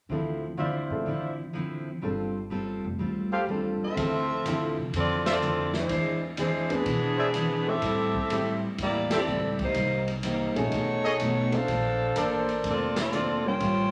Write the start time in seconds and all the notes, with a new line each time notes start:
0.09 D2 D3 F3 C4 E4 F4 A4
0.57 D3 F3 C4 E4 F4 C5 D5 E5
0.90 A2 C4 E4 F4 A4
1.06 A1 D3 F3 C4 E4
1.53 D3 F3 C4 E4
2.02 G1 G3 C4 D4 F4 A4
2.50 G3 C4 F4 A4
2.85 F1
2.99 D2 G3 C4 F4 A4
3.32 G4 A4 C5 F5
3.47 G3 C4 D4 F4 A4
3.51 A4
3.81 D#2 C4 F4 A4 E5
3.95 D2 D3 F3 C4 E4 F4 A4, kick, ride
3.99 E4
4.45 D3 F3 C4 E4 F4 A4, hi-hat pedal, ride
4.78 C2
4.93 F2 D3 F3 C4 F4 A4 D5, kick, ride
4.97 E4
5.26 C4 F4 A4 C5 D5 E5, snare, ride
5.41 D3 F3 C4 E4, hi-hat pedal
5.74 snare
5.78 G#3 D4 E4 C5
5.89 E2 E3 C4 D4, kick, ride
5.93 G#4
6.37 E3 G#3 C4 D4 E4 G#4 C5, hi-hat pedal, ride
6.70 D2 E3 B3 C4 D4 G#4, ride
6.85 B2 E3 C4 D4 G#4, kick, ride
7.18 G#4 C5 D5 E5
7.34 E3 C4 D4 G#4, hi-hat pedal, ride
7.67 A3 C4 E4 G4 A4 E5
7.81 A2 G3 C4 E4, kick, ride
8.15 kick
8.30 A2 G3 A3 C4 E4 G4, hi-hat pedal, ride
8.78 E2 A2 G3 A#3 C4 E4 G4 D5, kick, ride
9.11 A3 C4 E4 G4 A4 C5 E5, snare, ride
9.15 C4 G4 A4 D5
9.26 C#2 A2 G3 C4 E4, hi-hat pedal
9.59 D#4, kick, ride
9.63 A#3 G4 C5
9.74 C2 C3 G3 A#3, kick, ride
9.78 D#4
10.08 ride
10.23 C3 G3 A#3 D#4 G4 C5, hi-hat pedal, ride
10.55 A#1 A3 C#4 D#4 F#4 G#4 C#5, ride
10.71 B1 B2 A3 D#4, kick, ride
10.76 G#4
11.04 G#4 A4 C#5 D#5
11.20 B2 A3 D#4 G#4, hi-hat pedal, ride
11.52 B1 A3 C4 D4 F4 A4 C5 F5, ride
11.68 A#1 A#3 D4 A4, kick, ride
11.72 C5
12.16 A1 A#3 D4 A4 A#4 C5 D5, hi-hat pedal, ride
12.49 ride
12.64 F1 A#3 D4 A4 C5, kick, ride
12.68 C4 F4 A4 D5
12.96 snare, ride
13.01 C4 F4 A4 D5
13.12 A#3 D4 A4 C5, hi-hat pedal
13.46 G3 A#3 C#4 F4 C5 C#5 G5
13.60 A1 A2 G3 C#4 F4, kick, ride